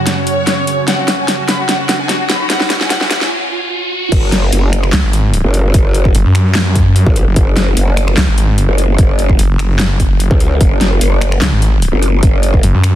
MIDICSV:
0, 0, Header, 1, 7, 480
1, 0, Start_track
1, 0, Tempo, 405405
1, 1038, Time_signature, 4, 2, 24, 8
1, 15335, End_track
2, 0, Start_track
2, 0, Title_t, "Violin section"
2, 0, Program_c, 0, 48
2, 80, Note_on_c, 0, 66, 64
2, 170, Note_off_c, 0, 66, 0
2, 205, Note_on_c, 0, 73, 94
2, 948, Note_off_c, 0, 73, 0
2, 1039, Note_on_c, 0, 78, 91
2, 1129, Note_off_c, 0, 78, 0
2, 1166, Note_on_c, 0, 66, 63
2, 1247, Note_off_c, 0, 66, 0
2, 1279, Note_on_c, 0, 66, 58
2, 1369, Note_off_c, 0, 66, 0
2, 1404, Note_on_c, 0, 80, 82
2, 1486, Note_off_c, 0, 80, 0
2, 1519, Note_on_c, 0, 66, 57
2, 1609, Note_off_c, 0, 66, 0
2, 1645, Note_on_c, 0, 66, 59
2, 1726, Note_off_c, 0, 66, 0
2, 1758, Note_on_c, 0, 83, 89
2, 1849, Note_off_c, 0, 83, 0
2, 1884, Note_on_c, 0, 66, 56
2, 1966, Note_off_c, 0, 66, 0
2, 1998, Note_on_c, 0, 78, 94
2, 2089, Note_off_c, 0, 78, 0
2, 2124, Note_on_c, 0, 66, 58
2, 2206, Note_off_c, 0, 66, 0
2, 2238, Note_on_c, 0, 66, 62
2, 2329, Note_off_c, 0, 66, 0
2, 2364, Note_on_c, 0, 80, 88
2, 2446, Note_off_c, 0, 80, 0
2, 2478, Note_on_c, 0, 66, 65
2, 2569, Note_off_c, 0, 66, 0
2, 2605, Note_on_c, 0, 66, 60
2, 2686, Note_off_c, 0, 66, 0
2, 2718, Note_on_c, 0, 83, 89
2, 2809, Note_off_c, 0, 83, 0
2, 2844, Note_on_c, 0, 66, 59
2, 2926, Note_off_c, 0, 66, 0
2, 2958, Note_on_c, 0, 78, 98
2, 3049, Note_off_c, 0, 78, 0
2, 3084, Note_on_c, 0, 66, 65
2, 3166, Note_off_c, 0, 66, 0
2, 3197, Note_on_c, 0, 66, 63
2, 3288, Note_off_c, 0, 66, 0
2, 3323, Note_on_c, 0, 80, 87
2, 3406, Note_off_c, 0, 80, 0
2, 3437, Note_on_c, 0, 78, 97
2, 3528, Note_off_c, 0, 78, 0
2, 3564, Note_on_c, 0, 66, 65
2, 3646, Note_off_c, 0, 66, 0
2, 3677, Note_on_c, 0, 66, 65
2, 3768, Note_off_c, 0, 66, 0
2, 3803, Note_on_c, 0, 80, 93
2, 3886, Note_off_c, 0, 80, 0
2, 15335, End_track
3, 0, Start_track
3, 0, Title_t, "Ambient pad"
3, 0, Program_c, 1, 92
3, 0, Note_on_c, 1, 42, 81
3, 0, Note_on_c, 1, 49, 76
3, 0, Note_on_c, 1, 61, 78
3, 0, Note_on_c, 1, 66, 78
3, 0, Note_on_c, 1, 73, 92
3, 4830, Note_off_c, 1, 42, 0
3, 4830, Note_off_c, 1, 61, 0
3, 4830, Note_off_c, 1, 66, 0
3, 4830, Note_off_c, 1, 73, 0
3, 4831, Note_off_c, 1, 49, 0
3, 15335, End_track
4, 0, Start_track
4, 0, Title_t, "Detuned saw bass"
4, 0, Program_c, 2, 39
4, 5839, Note_on_c, 2, 37, 94
4, 5945, Note_off_c, 2, 37, 0
4, 5965, Note_on_c, 2, 32, 96
4, 6424, Note_off_c, 2, 32, 0
4, 7278, Note_on_c, 2, 30, 102
4, 7384, Note_off_c, 2, 30, 0
4, 7405, Note_on_c, 2, 42, 94
4, 8344, Note_off_c, 2, 42, 0
4, 8605, Note_on_c, 2, 30, 95
4, 8700, Note_off_c, 2, 30, 0
4, 9678, Note_on_c, 2, 37, 97
4, 9784, Note_off_c, 2, 37, 0
4, 9805, Note_on_c, 2, 32, 97
4, 10264, Note_off_c, 2, 32, 0
4, 11118, Note_on_c, 2, 30, 100
4, 11224, Note_off_c, 2, 30, 0
4, 11244, Note_on_c, 2, 30, 95
4, 12184, Note_off_c, 2, 30, 0
4, 13518, Note_on_c, 2, 37, 98
4, 13624, Note_off_c, 2, 37, 0
4, 13644, Note_on_c, 2, 32, 94
4, 14104, Note_off_c, 2, 32, 0
4, 14959, Note_on_c, 2, 30, 100
4, 15065, Note_off_c, 2, 30, 0
4, 15085, Note_on_c, 2, 42, 95
4, 15335, Note_off_c, 2, 42, 0
4, 15335, End_track
5, 0, Start_track
5, 0, Title_t, "Wobble bass"
5, 0, Program_c, 3, 39
5, 4878, Note_on_c, 3, 30, 100
5, 5340, Note_off_c, 3, 30, 0
5, 5358, Note_on_c, 3, 30, 93
5, 5820, Note_off_c, 3, 30, 0
5, 6445, Note_on_c, 3, 30, 96
5, 6780, Note_off_c, 3, 30, 0
5, 6798, Note_on_c, 3, 30, 100
5, 7260, Note_off_c, 3, 30, 0
5, 8364, Note_on_c, 3, 33, 101
5, 8584, Note_off_c, 3, 33, 0
5, 8718, Note_on_c, 3, 30, 101
5, 9180, Note_off_c, 3, 30, 0
5, 9198, Note_on_c, 3, 30, 97
5, 9660, Note_off_c, 3, 30, 0
5, 10284, Note_on_c, 3, 30, 100
5, 10620, Note_off_c, 3, 30, 0
5, 10638, Note_on_c, 3, 30, 99
5, 11100, Note_off_c, 3, 30, 0
5, 12205, Note_on_c, 3, 37, 100
5, 12540, Note_off_c, 3, 37, 0
5, 12558, Note_on_c, 3, 30, 101
5, 13020, Note_off_c, 3, 30, 0
5, 13039, Note_on_c, 3, 30, 97
5, 13500, Note_off_c, 3, 30, 0
5, 14125, Note_on_c, 3, 30, 102
5, 14460, Note_off_c, 3, 30, 0
5, 14478, Note_on_c, 3, 30, 103
5, 14940, Note_off_c, 3, 30, 0
5, 15335, End_track
6, 0, Start_track
6, 0, Title_t, "Riser"
6, 0, Program_c, 4, 103
6, 0, Note_on_c, 4, 60, 78
6, 4878, Note_off_c, 4, 60, 0
6, 15335, End_track
7, 0, Start_track
7, 0, Title_t, "Drums"
7, 77, Note_on_c, 9, 38, 66
7, 77, Note_on_c, 9, 42, 81
7, 196, Note_off_c, 9, 38, 0
7, 196, Note_off_c, 9, 42, 0
7, 317, Note_on_c, 9, 42, 53
7, 436, Note_off_c, 9, 42, 0
7, 557, Note_on_c, 9, 38, 63
7, 557, Note_on_c, 9, 42, 73
7, 676, Note_off_c, 9, 38, 0
7, 676, Note_off_c, 9, 42, 0
7, 798, Note_on_c, 9, 42, 53
7, 916, Note_off_c, 9, 42, 0
7, 1038, Note_on_c, 9, 38, 73
7, 1038, Note_on_c, 9, 42, 76
7, 1156, Note_off_c, 9, 38, 0
7, 1156, Note_off_c, 9, 42, 0
7, 1278, Note_on_c, 9, 38, 77
7, 1278, Note_on_c, 9, 42, 52
7, 1397, Note_off_c, 9, 38, 0
7, 1397, Note_off_c, 9, 42, 0
7, 1518, Note_on_c, 9, 38, 77
7, 1518, Note_on_c, 9, 42, 73
7, 1636, Note_off_c, 9, 38, 0
7, 1636, Note_off_c, 9, 42, 0
7, 1758, Note_on_c, 9, 38, 80
7, 1758, Note_on_c, 9, 42, 53
7, 1877, Note_off_c, 9, 38, 0
7, 1877, Note_off_c, 9, 42, 0
7, 1998, Note_on_c, 9, 38, 84
7, 1998, Note_on_c, 9, 42, 78
7, 2117, Note_off_c, 9, 38, 0
7, 2117, Note_off_c, 9, 42, 0
7, 2238, Note_on_c, 9, 38, 85
7, 2238, Note_on_c, 9, 42, 52
7, 2356, Note_off_c, 9, 38, 0
7, 2356, Note_off_c, 9, 42, 0
7, 2478, Note_on_c, 9, 38, 81
7, 2478, Note_on_c, 9, 42, 72
7, 2596, Note_off_c, 9, 38, 0
7, 2596, Note_off_c, 9, 42, 0
7, 2718, Note_on_c, 9, 38, 91
7, 2718, Note_on_c, 9, 42, 53
7, 2836, Note_off_c, 9, 38, 0
7, 2836, Note_off_c, 9, 42, 0
7, 2958, Note_on_c, 9, 38, 89
7, 2958, Note_on_c, 9, 42, 73
7, 3076, Note_off_c, 9, 38, 0
7, 3076, Note_off_c, 9, 42, 0
7, 3084, Note_on_c, 9, 38, 80
7, 3197, Note_off_c, 9, 38, 0
7, 3197, Note_on_c, 9, 38, 97
7, 3197, Note_on_c, 9, 42, 50
7, 3316, Note_off_c, 9, 38, 0
7, 3316, Note_off_c, 9, 42, 0
7, 3324, Note_on_c, 9, 38, 87
7, 3438, Note_off_c, 9, 38, 0
7, 3438, Note_on_c, 9, 38, 96
7, 3438, Note_on_c, 9, 42, 74
7, 3556, Note_off_c, 9, 38, 0
7, 3556, Note_off_c, 9, 42, 0
7, 3564, Note_on_c, 9, 38, 84
7, 3678, Note_off_c, 9, 38, 0
7, 3678, Note_on_c, 9, 38, 105
7, 3678, Note_on_c, 9, 42, 51
7, 3796, Note_off_c, 9, 38, 0
7, 3796, Note_off_c, 9, 42, 0
7, 3804, Note_on_c, 9, 38, 88
7, 3922, Note_off_c, 9, 38, 0
7, 4878, Note_on_c, 9, 36, 122
7, 4878, Note_on_c, 9, 42, 81
7, 4878, Note_on_c, 9, 49, 101
7, 4996, Note_off_c, 9, 36, 0
7, 4997, Note_off_c, 9, 42, 0
7, 4997, Note_off_c, 9, 49, 0
7, 5118, Note_on_c, 9, 38, 64
7, 5118, Note_on_c, 9, 42, 57
7, 5236, Note_off_c, 9, 38, 0
7, 5236, Note_off_c, 9, 42, 0
7, 5358, Note_on_c, 9, 42, 84
7, 5476, Note_off_c, 9, 42, 0
7, 5598, Note_on_c, 9, 26, 77
7, 5598, Note_on_c, 9, 42, 57
7, 5716, Note_off_c, 9, 26, 0
7, 5716, Note_off_c, 9, 42, 0
7, 5724, Note_on_c, 9, 26, 58
7, 5838, Note_on_c, 9, 38, 120
7, 5838, Note_on_c, 9, 39, 91
7, 5838, Note_on_c, 9, 42, 83
7, 5843, Note_off_c, 9, 26, 0
7, 5956, Note_off_c, 9, 38, 0
7, 5956, Note_off_c, 9, 39, 0
7, 5956, Note_off_c, 9, 42, 0
7, 6078, Note_on_c, 9, 42, 57
7, 6196, Note_off_c, 9, 42, 0
7, 6318, Note_on_c, 9, 42, 77
7, 6436, Note_off_c, 9, 42, 0
7, 6558, Note_on_c, 9, 42, 58
7, 6676, Note_off_c, 9, 42, 0
7, 6798, Note_on_c, 9, 36, 126
7, 6798, Note_on_c, 9, 42, 79
7, 6916, Note_off_c, 9, 36, 0
7, 6916, Note_off_c, 9, 42, 0
7, 7038, Note_on_c, 9, 42, 54
7, 7156, Note_off_c, 9, 42, 0
7, 7164, Note_on_c, 9, 36, 66
7, 7278, Note_on_c, 9, 42, 79
7, 7283, Note_off_c, 9, 36, 0
7, 7396, Note_off_c, 9, 42, 0
7, 7518, Note_on_c, 9, 26, 82
7, 7518, Note_on_c, 9, 42, 54
7, 7636, Note_off_c, 9, 26, 0
7, 7636, Note_off_c, 9, 42, 0
7, 7758, Note_on_c, 9, 38, 125
7, 7758, Note_on_c, 9, 39, 95
7, 7758, Note_on_c, 9, 42, 81
7, 7876, Note_off_c, 9, 38, 0
7, 7876, Note_off_c, 9, 39, 0
7, 7876, Note_off_c, 9, 42, 0
7, 7998, Note_on_c, 9, 36, 64
7, 7998, Note_on_c, 9, 42, 56
7, 8116, Note_off_c, 9, 36, 0
7, 8116, Note_off_c, 9, 42, 0
7, 8238, Note_on_c, 9, 42, 79
7, 8356, Note_off_c, 9, 42, 0
7, 8364, Note_on_c, 9, 36, 111
7, 8478, Note_on_c, 9, 42, 58
7, 8483, Note_off_c, 9, 36, 0
7, 8596, Note_off_c, 9, 42, 0
7, 8718, Note_on_c, 9, 36, 127
7, 8718, Note_on_c, 9, 42, 78
7, 8836, Note_off_c, 9, 36, 0
7, 8836, Note_off_c, 9, 42, 0
7, 8958, Note_on_c, 9, 38, 67
7, 8958, Note_on_c, 9, 42, 53
7, 9076, Note_off_c, 9, 38, 0
7, 9076, Note_off_c, 9, 42, 0
7, 9198, Note_on_c, 9, 42, 77
7, 9317, Note_off_c, 9, 42, 0
7, 9438, Note_on_c, 9, 26, 80
7, 9438, Note_on_c, 9, 42, 55
7, 9556, Note_off_c, 9, 26, 0
7, 9556, Note_off_c, 9, 42, 0
7, 9565, Note_on_c, 9, 26, 60
7, 9678, Note_on_c, 9, 38, 126
7, 9678, Note_on_c, 9, 39, 93
7, 9678, Note_on_c, 9, 42, 80
7, 9683, Note_off_c, 9, 26, 0
7, 9797, Note_off_c, 9, 38, 0
7, 9797, Note_off_c, 9, 39, 0
7, 9797, Note_off_c, 9, 42, 0
7, 9918, Note_on_c, 9, 42, 53
7, 10037, Note_off_c, 9, 42, 0
7, 10158, Note_on_c, 9, 42, 74
7, 10277, Note_off_c, 9, 42, 0
7, 10398, Note_on_c, 9, 42, 52
7, 10517, Note_off_c, 9, 42, 0
7, 10638, Note_on_c, 9, 36, 127
7, 10638, Note_on_c, 9, 42, 76
7, 10757, Note_off_c, 9, 36, 0
7, 10757, Note_off_c, 9, 42, 0
7, 10878, Note_on_c, 9, 42, 50
7, 10997, Note_off_c, 9, 42, 0
7, 11005, Note_on_c, 9, 36, 63
7, 11118, Note_on_c, 9, 42, 71
7, 11123, Note_off_c, 9, 36, 0
7, 11236, Note_off_c, 9, 42, 0
7, 11358, Note_on_c, 9, 26, 82
7, 11358, Note_on_c, 9, 42, 52
7, 11476, Note_off_c, 9, 26, 0
7, 11476, Note_off_c, 9, 42, 0
7, 11598, Note_on_c, 9, 38, 127
7, 11598, Note_on_c, 9, 39, 88
7, 11598, Note_on_c, 9, 42, 77
7, 11716, Note_off_c, 9, 38, 0
7, 11716, Note_off_c, 9, 39, 0
7, 11716, Note_off_c, 9, 42, 0
7, 11838, Note_on_c, 9, 36, 62
7, 11838, Note_on_c, 9, 42, 52
7, 11956, Note_off_c, 9, 42, 0
7, 11957, Note_off_c, 9, 36, 0
7, 12078, Note_on_c, 9, 42, 70
7, 12196, Note_off_c, 9, 42, 0
7, 12205, Note_on_c, 9, 36, 115
7, 12318, Note_on_c, 9, 42, 51
7, 12323, Note_off_c, 9, 36, 0
7, 12437, Note_off_c, 9, 42, 0
7, 12558, Note_on_c, 9, 36, 127
7, 12558, Note_on_c, 9, 42, 75
7, 12677, Note_off_c, 9, 36, 0
7, 12677, Note_off_c, 9, 42, 0
7, 12798, Note_on_c, 9, 38, 64
7, 12798, Note_on_c, 9, 42, 52
7, 12917, Note_off_c, 9, 38, 0
7, 12917, Note_off_c, 9, 42, 0
7, 13038, Note_on_c, 9, 42, 79
7, 13156, Note_off_c, 9, 42, 0
7, 13278, Note_on_c, 9, 26, 84
7, 13278, Note_on_c, 9, 42, 53
7, 13396, Note_off_c, 9, 26, 0
7, 13396, Note_off_c, 9, 42, 0
7, 13405, Note_on_c, 9, 26, 66
7, 13518, Note_on_c, 9, 38, 120
7, 13518, Note_on_c, 9, 39, 90
7, 13518, Note_on_c, 9, 42, 78
7, 13523, Note_off_c, 9, 26, 0
7, 13636, Note_off_c, 9, 38, 0
7, 13636, Note_off_c, 9, 39, 0
7, 13636, Note_off_c, 9, 42, 0
7, 13758, Note_on_c, 9, 42, 51
7, 13876, Note_off_c, 9, 42, 0
7, 13998, Note_on_c, 9, 42, 70
7, 14116, Note_off_c, 9, 42, 0
7, 14237, Note_on_c, 9, 42, 54
7, 14356, Note_off_c, 9, 42, 0
7, 14478, Note_on_c, 9, 36, 116
7, 14478, Note_on_c, 9, 42, 76
7, 14596, Note_off_c, 9, 42, 0
7, 14597, Note_off_c, 9, 36, 0
7, 14717, Note_on_c, 9, 42, 55
7, 14836, Note_off_c, 9, 42, 0
7, 14845, Note_on_c, 9, 36, 58
7, 14957, Note_on_c, 9, 42, 74
7, 14963, Note_off_c, 9, 36, 0
7, 15076, Note_off_c, 9, 42, 0
7, 15197, Note_on_c, 9, 26, 85
7, 15197, Note_on_c, 9, 42, 54
7, 15316, Note_off_c, 9, 26, 0
7, 15316, Note_off_c, 9, 42, 0
7, 15335, End_track
0, 0, End_of_file